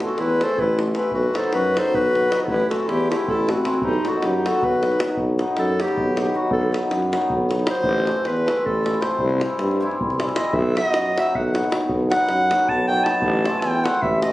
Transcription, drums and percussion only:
0.00 davul high
0.08 davul high
0.18 davul high
0.29 davul high
0.41 davul high
0.50 davul high
0.58 davul low
0.69 davul high
0.79 davul high
0.95 davul high
1.03 davul high
1.11 davul low
1.23 davul high
1.35 davul high
1.44 davul high
1.53 davul high
1.65 davul high
1.77 davul high
1.85 davul high
1.94 davul low
2.05 davul high
2.15 davul high
2.32 davul high
2.40 davul high
2.48 davul low
2.60 davul high
2.71 davul high
2.80 davul high
2.89 davul high
3.01 davul high
3.12 davul high
3.20 davul high
3.28 davul low
3.49 davul high
3.65 davul high
3.74 davul high
3.82 davul low
3.93 davul high
4.05 davul high
4.22 davul high
4.33 davul high
4.46 davul high
4.62 davul low
4.83 davul high
4.92 davul high
5.00 davul high
5.09 davul high
5.17 davul low
5.39 davul high
5.57 davul high
5.68 davul high
5.80 davul high
5.88 davul high
5.97 davul low
6.17 davul high
6.26 davul high
6.51 davul low
6.74 davul high
6.91 davul high
7.02 davul high
7.13 davul high
7.22 davul high
7.30 davul low
7.51 davul high
7.59 davul high
7.67 davul high
7.75 davul high
7.84 davul low
8.07 davul high
8.25 davul high
8.37 davul high
8.48 davul high
8.57 davul high
8.66 davul low
8.86 davul high
8.94 davul high
9.02 davul high
9.11 davul high
9.19 davul low
9.30 davul high
9.41 davul high
9.50 davul high
9.59 davul high
9.71 davul high
9.91 davul high
10.01 davul low
10.10 davul high
10.20 davul high
10.29 davul high
10.36 davul high
10.45 davul high
10.53 davul low
10.77 davul high
10.94 davul high
11.06 davul high
11.18 davul high
11.27 davul high
11.35 davul low
11.55 davul high
11.64 davul high
11.72 davul high
11.80 davul high
11.89 davul low
12.12 davul high
12.29 davul high
12.40 davul high
12.51 davul high
12.59 davul high
12.68 davul low
12.97 davul high
13.06 davul high
13.14 davul high
13.22 davul low
13.45 davul high
13.62 davul high
13.74 davul high
13.86 davul high
13.95 davul high
14.02 davul low
14.22 davul high

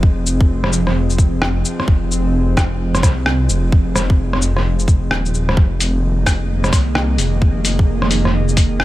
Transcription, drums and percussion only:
0.03 kick
0.26 shaker
0.41 kick
0.64 cross-stick
0.73 shaker
0.87 cross-stick
1.10 shaker
1.19 kick, shaker
1.42 cross-stick
1.65 shaker
1.80 cross-stick
1.88 kick
2.11 shaker
2.57 kick, cross-stick, shaker
2.95 cross-stick, shaker
3.03 kick, cross-stick, shaker
3.26 cross-stick
3.49 shaker
3.72 kick
3.96 cross-stick, shaker
4.10 kick
4.33 cross-stick
4.42 shaker
4.57 cross-stick
4.79 shaker
4.88 kick, shaker
5.11 cross-stick
5.25 shaker
5.34 shaker
5.49 cross-stick
5.57 kick
5.80 open hi-hat, shaker
6.26 kick, cross-stick, open hi-hat, shaker
6.64 cross-stick, shaker
6.73 kick, cross-stick, open hi-hat, shaker
6.95 cross-stick
7.18 open hi-hat, shaker
7.42 kick
7.65 open hi-hat, shaker
7.79 kick
8.02 cross-stick
8.11 open hi-hat, shaker
8.25 cross-stick
8.48 shaker
8.57 kick, open hi-hat, shaker
8.80 cross-stick

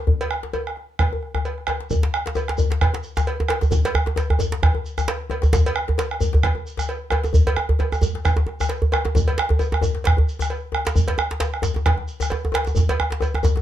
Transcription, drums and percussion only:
0.07 bombo low, djembe bass
0.21 cowbell
0.30 bombo rim, djembe slap
0.43 djembe slap
0.53 cowbell, djembe tone
0.67 bombo rim
0.76 bombo rim, djembe slap
0.99 bombo rim, bombo low, cowbell, djembe slap
1.13 djembe tone
1.23 bombo rim
1.35 bombo rim, djembe slap, djembe bass
1.45 bombo rim, cowbell, djembe slap
1.58 bombo rim
1.67 bombo rim, cowbell, djembe tone
1.80 djembe slap
1.90 bombo rim, bombo low, djembe bass, shekere
2.03 djembe slap
2.14 bombo rim
2.26 djembe slap
2.35 cowbell, djembe slap, djembe tone, shekere
2.48 bombo rim, djembe slap
2.58 djembe bass, shekere
2.70 djembe slap
2.81 bombo rim, bombo low, cowbell
2.94 djembe slap, djembe tone
3.03 djembe slap, shekere
3.16 bombo rim, djembe slap, djembe bass, shekere
3.27 cowbell
3.40 djembe tone
3.48 bombo rim, cowbell, djembe slap, djembe tone
3.61 djembe slap, djembe bass, shekere
3.71 bombo rim, bombo low, djembe tone, djembe bass, shekere
3.85 cowbell, djembe slap
3.95 bombo rim, djembe bass
4.06 djembe slap, djembe tone
4.16 cowbell, djembe slap, djembe tone, shekere
4.30 bombo rim, djembe bass
4.39 djembe tone, djembe bass, shekere
4.52 djembe slap
4.63 bombo rim, bombo low, cowbell, djembe bass
4.75 djembe slap, djembe tone
4.84 djembe slap, shekere
4.98 bombo rim, djembe slap, djembe bass, shekere
5.08 cowbell, djembe slap
5.30 cowbell, djembe tone
5.42 djembe slap, djembe bass, shekere
5.53 bombo rim, bombo low, djembe slap, djembe bass, shekere
5.66 cowbell
5.76 bombo rim
5.88 djembe slap, djembe bass
5.98 cowbell, djembe slap, djembe tone, shekere
6.11 bombo rim
6.21 djembe bass, shekere
6.33 djembe slap, djembe bass
6.43 bombo rim, bombo low, cowbell
6.55 djembe slap, djembe tone
6.65 djembe slap, shekere
6.77 bombo rim, djembe slap, djembe bass, shekere
6.89 cowbell
7.10 bombo rim, cowbell, djembe tone
7.12 djembe tone
7.24 djembe slap, djembe tone, shekere
7.33 bombo low, djembe bass, shekere
7.34 djembe bass
7.47 cowbell, djembe tone
7.56 bombo rim, djembe slap, djembe tone
7.69 djembe slap, djembe bass
7.79 bombo rim, cowbell, djembe tone
7.92 bombo rim, djembe tone, shekere
8.02 djembe slap, djembe bass, shekere
8.15 bombo rim, djembe slap
8.25 bombo rim, bombo low, cowbell, shekere
8.37 djembe slap, djembe tone
8.46 bombo rim, djembe slap, djembe tone
8.60 bombo rim, djembe slap, djembe bass, shekere
8.69 cowbell, djembe slap
8.82 djembe bass
8.92 bombo rim, cowbell, djembe tone
9.05 djembe slap, djembe tone
9.15 bombo rim, bombo low, djembe tone, djembe bass, shekere
9.28 cowbell
9.38 bombo rim, djembe slap
9.49 djembe slap, djembe bass
9.59 cowbell, djembe slap, djembe tone, shekere
9.72 bombo rim, djembe tone
9.82 djembe tone, djembe bass, shekere
9.95 djembe slap
10.04 bombo rim, bombo low, cowbell, djembe slap
10.17 djembe slap, djembe tone, djembe bass
10.27 djembe slap, shekere
10.39 bombo rim, djembe slap, djembe bass, shekere
10.50 cowbell
10.72 bombo rim, djembe tone
10.85 djembe slap, shekere
10.87 djembe slap
10.95 bombo rim, bombo low, djembe bass, shekere
11.08 cowbell, djembe slap
11.18 bombo rim, djembe tone
11.31 djembe slap
11.40 cowbell, djembe slap, djembe tone, shekere
11.54 bombo rim
11.62 djembe slap, djembe bass, shekere
11.74 djembe slap, djembe tone
11.86 bombo rim, bombo low, cowbell, djembe slap
11.98 djembe tone
12.08 djembe slap, shekere
12.20 bombo rim, djembe slap, djembe bass, shekere
12.30 cowbell, djembe tone
12.45 djembe tone
12.52 bombo rim, cowbell, djembe slap, djembe tone
12.65 djembe slap, djembe tone, shekere
12.75 bombo rim, bombo low, djembe tone, djembe bass, shekere
12.89 cowbell, djembe tone
13.00 bombo rim, djembe tone
13.10 djembe slap
13.12 djembe slap
13.21 cowbell, djembe slap, djembe tone, shekere
13.34 bombo rim, djembe tone
13.43 djembe tone, djembe bass, shekere
13.56 djembe slap, djembe tone

